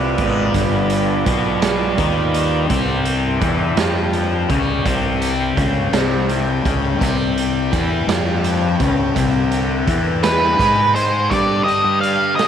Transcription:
Already playing: C2 G2 B2 C3 D3 B3 C4 F4 B4 D5
0.18 G#1 G#2 G#3 B3, kick, closed hi-hat
0.54 G1 G2 G3, kick, closed hi-hat
0.83 G2
0.90 closed hi-hat
1.25 B1 B2 B3, kick, closed hi-hat
1.62 snare, closed hi-hat
1.98 D#2 D#3 D#4, kick, closed hi-hat
2.06 G3
2.34 closed hi-hat
2.64 G3
2.69 C2 C3 C4 G5, kick, closed hi-hat
3.05 closed hi-hat
3.26 G2
3.41 E2 E3 E4, kick, closed hi-hat
3.77 F2 F3 F4, snare, closed hi-hat
4.13 closed hi-hat
4.49 C#2 C#3 G3 C#4, kick, closed hi-hat
4.85 C2 C3 C4, kick, closed hi-hat
5.10 G3
5.22 closed hi-hat
5.56 C#2 C#3 C#4, kick, closed hi-hat
5.70 G2
5.92 C2 C3 C4, snare, closed hi-hat
6.29 closed hi-hat
6.64 C#2 C#3 C#4, kick, closed hi-hat
6.94 G3
7.00 C2 C3 C4, kick, closed hi-hat
7.38 closed hi-hat
7.56 G3
7.72 E2 E3 E4, kick, closed hi-hat
8.07 F2 F3 F4, snare, closed hi-hat
8.18 G2
8.44 closed hi-hat
8.80 C#2 C#3 C#4, kick, closed hi-hat
9.16 C2 C3 C4, kick, closed hi-hat
9.40 D3
9.52 closed hi-hat
9.87 E2 E3 E4, kick, closed hi-hat
10.23 B4, snare, closed hi-hat
10.59 G#2 G#3 G#4, kick, closed hi-hat
10.95 C5, closed hi-hat
11.30 G2 D3 G3 G4 D5, kick, closed hi-hat
11.64 G4 D#5
11.68 closed hi-hat
11.84 G2
12.01 D4 F5, closed hi-hat
12.36 G3 D#5, snare, closed hi-hat

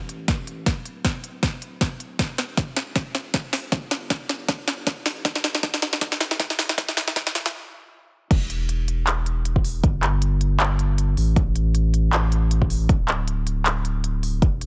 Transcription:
Already playing: A1
0.09 closed hi-hat
0.28 kick, snare, closed hi-hat
0.47 closed hi-hat
0.66 D1, kick, snare, closed hi-hat
0.85 closed hi-hat
1.05 kick, snare, closed hi-hat
1.24 closed hi-hat
1.43 kick, snare, closed hi-hat
1.62 closed hi-hat
1.81 kick, snare, closed hi-hat
2.00 closed hi-hat
2.19 E1, kick, snare, closed hi-hat
2.38 snare, closed hi-hat
2.57 kick, snare, closed hi-hat
2.77 snare, closed hi-hat
2.96 kick, snare, closed hi-hat
3.15 snare, closed hi-hat
3.34 kick, snare, closed hi-hat
3.53 snare, open hi-hat
3.72 G1, kick, snare, closed hi-hat
3.91 snare, closed hi-hat
4.10 kick, snare, closed hi-hat
4.29 snare, closed hi-hat
4.49 kick, snare, closed hi-hat
4.68 snare, closed hi-hat
4.87 kick, snare, closed hi-hat
5.06 A1, snare, open hi-hat
5.25 kick, snare, closed hi-hat
5.36 snare
5.44 snare, closed hi-hat
5.55 snare
5.63 kick, snare, closed hi-hat
5.74 snare
5.82 snare, closed hi-hat
5.93 snare
6.01 kick, snare, closed hi-hat
6.12 snare
6.21 snare, closed hi-hat
6.31 snare
6.40 kick, snare, closed hi-hat
6.50 snare
6.59 snare, open hi-hat
6.69 snare
6.78 D1, kick, snare, closed hi-hat
6.89 snare
6.97 snare, closed hi-hat
7.08 snare
7.16 kick, snare, closed hi-hat
7.27 snare
7.35 snare, closed hi-hat
7.46 snare
8.31 E1, kick, closed hi-hat, crash
8.50 closed hi-hat
8.69 closed hi-hat
8.88 closed hi-hat
9.07 clap, closed hi-hat
9.26 closed hi-hat
9.45 closed hi-hat
9.56 kick
9.64 open hi-hat
9.84 G1, kick, closed hi-hat
10.03 clap, closed hi-hat
10.22 closed hi-hat
10.41 closed hi-hat
10.60 clap, closed hi-hat
10.79 closed hi-hat
10.98 closed hi-hat
11.17 A1, open hi-hat
11.36 kick, closed hi-hat
11.56 closed hi-hat
11.75 closed hi-hat
11.94 closed hi-hat
12.13 clap, closed hi-hat
12.32 closed hi-hat
12.51 closed hi-hat
12.62 kick
12.70 open hi-hat
12.89 D1, kick, closed hi-hat
13.08 clap, closed hi-hat
13.28 closed hi-hat
13.47 closed hi-hat
13.66 clap, closed hi-hat
13.85 closed hi-hat
14.04 closed hi-hat
14.23 open hi-hat
14.42 E1, kick, closed hi-hat
14.61 closed hi-hat

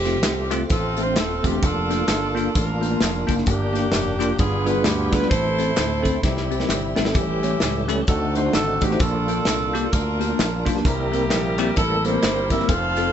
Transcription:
Already playing: F1 A3 C4 F4 G4
0.05 A3 C4 F4, snare, closed hi-hat, tambourine
0.23 C2, snare, clap, closed hi-hat, tambourine
0.51 A3 C4 F4, clap, closed hi-hat, tambourine
0.70 A1 C4 F4 A4, kick, closed hi-hat, tambourine
0.97 A3 C4 F4, closed hi-hat, tambourine
1.01 A3 C5
1.06 C4 D4
1.16 D#1 A4, snare, clap, closed hi-hat, tambourine
1.43 E1 A3 C4 F4 G4, kick, closed hi-hat, tambourine
1.51 A3 C4 D4
1.62 F1 A#3 D4 E4 F4 A4, kick, closed hi-hat, tambourine
1.68 F4
1.90 A#3 D4 F4, snare, closed hi-hat, tambourine
2.08 G1, snare, clap, closed hi-hat, tambourine
2.35 A#3 D4 F4, closed hi-hat, tambourine
2.55 A1 D4 F4 A#4, kick, closed hi-hat, tambourine
2.81 A#3 D4 F4, closed hi-hat, tambourine
2.90 A#3 D4 F4
3.01 F1, snare, clap, closed hi-hat, tambourine
3.27 F#1 A#3 D4 F4, kick, closed hi-hat, tambourine
3.36 A#3 D4 E4, snare
3.46 G1 G2 A#3 D4 G4, kick, closed hi-hat, tambourine
3.73 A#3 D4 G4, snare, closed hi-hat, tambourine
3.92 F1, snare, clap, closed hi-hat, tambourine
4.19 A#3 D4 F4, clap, closed hi-hat, tambourine
4.37 G1 G2 G3 B3 D4 F4 G#4, kick, closed hi-hat, tambourine
4.65 G3 B3 D4 F4 G#4 B4, closed hi-hat, tambourine
4.73 G3 B3 D4 F4 G#4
4.84 D2 G4, snare, clap, closed hi-hat, tambourine
5.11 G3 B3 D4 F4 G#4 B4, kick, closed hi-hat, tambourine
5.20 G3 B3 D4 F4 B4, snare
5.30 A1 A2 A3 C4 E4 A4 C5, kick, closed hi-hat, tambourine
5.58 C4 E4 A4, snare, closed hi-hat, tambourine
5.77 D2, snare, clap, closed hi-hat, tambourine
6.03 C4 E4 A4, kick, closed hi-hat, tambourine
6.22 C2 C3 G3 C4 D#4 E4 G4, kick, snare, tambourine
6.30 E4
6.37 snare
6.51 C4 E4 G4, tambourine
6.60 C4 E4 A#4, snare
6.69 G1, snare, clap, tambourine
6.96 G#1 C4 E4 A4, snare, tambourine
7.05 C4 E4 A4, snare
7.14 A1 A2 E3 G3 A3 A#3 C#4 E4 G4, kick, closed hi-hat, tambourine
7.20 C#4
7.43 A3 C#4 E4 G4 C#5, snare, closed hi-hat, tambourine
7.60 C#2, snare, clap, closed hi-hat, tambourine
7.88 A3 C#4 E4 G4 A4, clap, closed hi-hat, tambourine
8.07 D2 D3 A3 C4 D4 D#4 F#4 A4, kick, closed hi-hat, tambourine
8.35 A3 D4 D#4 F#4 C5, closed hi-hat, tambourine
8.45 A3 D4 D#4 F#4 D5
8.53 G#1 A4, snare, clap, closed hi-hat, tambourine
8.81 A1 A3 D4 D#4 F#4 G4 C5, kick, closed hi-hat, tambourine
8.91 A3 D4 D#4 F#4 C5, snare
8.99 A#1 A#2 A#3 D4 F4 A4, kick, closed hi-hat, tambourine
9.28 A#3 D4 F4, closed hi-hat, tambourine
9.45 C2, snare, clap, closed hi-hat, tambourine
9.73 A#3 D4 G4, closed hi-hat, tambourine
9.92 D2 D4 F4 A#4, kick, closed hi-hat, tambourine
10.19 A#3 D4 G4, closed hi-hat, tambourine
10.29 A#3 D4 F4
10.39 A#1, snare, clap, closed hi-hat, tambourine
10.65 B1 A#3 D4 F4, kick, closed hi-hat, tambourine
10.75 A#3 D4 G4, snare
10.84 C2 C3 G3 A#3 C4 E4 G4 A#4, kick, closed hi-hat, tambourine
11.12 G3 A#3 C4 E4 A#4, closed hi-hat, tambourine
11.30 A#1, snare, clap, closed hi-hat, tambourine
11.58 G3 A#3 C4 E4 G4, clap, closed hi-hat, tambourine
11.76 A1 E4 A4, kick, closed hi-hat, tambourine
12.05 G3 A#3 C4 E4 G4 A4 C5, closed hi-hat, tambourine
12.13 G3 A#3 C4 E4 A#4
12.23 G1, snare, clap, closed hi-hat, tambourine
12.50 G3 A#3 C4 E4 A#4 E5, kick, closed hi-hat, tambourine
12.60 G3 A#3 C4 E4 A#4, snare
12.69 F1 C4 F4 A4 C5 F5, kick, closed hi-hat, tambourine
12.96 C4 F4 A4, snare, closed hi-hat, tambourine

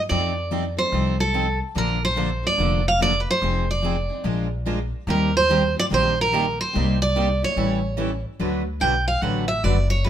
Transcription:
0.09 F2 F3 C4 D#4 A4 D5
0.51 F3 C4 D#4 A4
0.77 C4 D#4 A4 C5
0.92 C2 F3 C4 D#4 A4
1.20 A4
1.33 F3 C4 D#4 A4
1.75 A#1 D3 F3 A#3 D4 A4 A#4
2.05 C5
2.16 D3 F3 A#3 D4 A4
2.43 A#3 D4 A4 D5
2.57 F1 D3 F3 A#3 D4 A4
2.88 F5
2.99 D3 F3 A#3 D4 A4 D5
3.20 B4
3.31 C5
3.42 F1 F3 C4 D#4 G#4
3.71 D5
3.82 F3 C4 D#4 G#4
4.09 C4 D#4 G#4
4.24 A#1 F3 G#3 D4 F4 A#4
4.66 F3 G#3 D4 F4 A#4
5.07 D#2 D#3 G3 A#3 C4 D#4 G4 A#4 C5
5.37 C5
5.49 D#3 G3 A#3 C4 D#4 G4 C5
5.75 C4 G4 C5
5.79 D5
5.90 A#1 D#3 G3 A#3 C4 D#4 G4 C5
5.94 C5
6.21 A#4
6.31 D#3 G3 A#3 C4 D#4 G4 C5
6.61 C5
6.73 C2 C3 G3 A#3 D#4 G4
7.02 D5
7.15 C3 G3 A#3 D#4 G4
7.42 A#3 D#4 G4 C#5
7.56 A1 E3 G3 C#4 E4 A4
7.98 E3 G3 C#4 E4 A4
8.39 D2 D3 F#3 A3 D4 F#4 B4
8.80 B1 D3 F#3 A3 D4 F#4 B4 G5
9.08 F5
9.22 A1 D3 F#3 A3 D4 F#4 B4 F#5
9.48 E5
9.64 F#1 D3 F#3 A3 D4 F#4 B4 D5
9.90 C#5
10.04 C#3 G#3 B3 F4 G#4 B4

